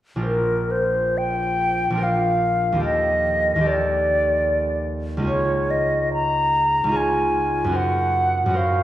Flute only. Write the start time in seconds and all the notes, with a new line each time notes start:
0.25 A#4
0.71 C5
1.18 G5
2.03 F5
2.84 D#5
3.67 D5
5.28 C#5
5.71 D#5
6.14 A#5
6.96 G#5
7.76 F#5
8.57 F5